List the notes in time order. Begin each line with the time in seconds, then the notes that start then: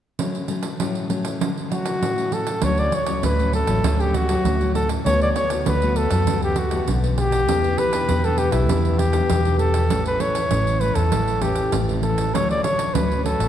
0.19 D3 F#3 A3 C#4, pandeiro
0.35 pandeiro
0.48 F#3 A3 C#4, pandeiro
0.63 pandeiro
0.80 A2 F#3 A3 C#4, pandeiro
0.95 pandeiro
1.10 F#3 A3 C#4, pandeiro
1.25 pandeiro
1.41 D3, pandeiro
1.57 pandeiro
1.71 F#3 A3 C#4 F#4, pandeiro
1.86 pandeiro
2.01 A2, pandeiro
2.17 F#3 A3 C#4, pandeiro
2.32 A4, pandeiro
2.47 pandeiro
2.62 D2 D3 F#3 A3 C#4 C#5, pandeiro
2.78 D5, pandeiro
2.92 C#5, pandeiro
3.06 F#3 A3 C#4, pandeiro
3.22 D2 A2 B4, pandeiro
3.39 F#3 A3 C#4, pandeiro
3.53 A4, pandeiro
3.67 A1 F#3 A3 C#4, pandeiro
3.84 D2 D3 F#3 A3 C#4, pandeiro
4.00 G4, pandeiro
4.14 F#4, pandeiro
4.29 F#3 A3 C#4, pandeiro
4.45 D2 A2, pandeiro
4.61 F#3 A3 C#4, pandeiro
4.75 A4, pandeiro
4.89 pandeiro
5.05 D2 D3 A3 B3 F#4 C#5, pandeiro
5.21 D5, pandeiro
5.36 C#5, pandeiro
5.50 A3 B3 F#4, pandeiro
5.66 D2 D3 B4, pandeiro
5.82 A3 B3 F#4, pandeiro
5.96 A4, pandeiro
6.10 F#2 A3 B3 F#4, pandeiro
6.27 D2 D3 A3 B3 F#4, pandeiro
6.42 G4, pandeiro
6.56 F#4, pandeiro
6.71 A3 B3 F#4, pandeiro
6.88 B1 D3, pandeiro
7.03 A3 B3 F#4, pandeiro
7.18 G4, pandeiro
7.32 pandeiro
7.48 E2 E3 B3 D4 G4, pandeiro
7.64 pandeiro
7.78 B4, pandeiro
7.93 B3 D4 G4, pandeiro
8.09 E2 B2, pandeiro
8.24 B3 D4 G4 A4, pandeiro
8.38 G4, pandeiro
8.52 B1 B3 D4 E4 G4, pandeiro
8.69 E2 E3 B3 D4 G4, pandeiro
8.85 pandeiro
8.99 G4, pandeiro
9.13 B3 D4 G4, pandeiro
9.29 E2 B2, pandeiro
9.45 B3 D4 G4, pandeiro
9.59 A4, pandeiro
9.74 pandeiro
9.90 A1 A2 E3 A3 C#4, pandeiro
10.06 B4, pandeiro
10.20 E3 A3 C#4 C#5, pandeiro
10.35 pandeiro
10.51 A1 E3 A3 C#4, pandeiro
10.67 pandeiro
10.80 E3 A3 C#4 B4, pandeiro
10.95 E2 A4, pandeiro
11.11 A1 A2, pandeiro
11.28 pandeiro
11.42 E3 A3 C#4 G4, pandeiro
11.55 pandeiro
11.72 A1 E3, pandeiro
11.88 E3 A3 C#4, pandeiro
12.03 A4, pandeiro
12.18 pandeiro
12.34 D2 D3 F#3 A3 C#4 C#5, pandeiro
12.51 D5, pandeiro
12.64 C#5, pandeiro
12.79 pandeiro
12.94 D2 A2 F#3 A3 C#4 B4, pandeiro
13.12 pandeiro
13.24 F#3 A3 C#4 A4, pandeiro
13.39 A1, pandeiro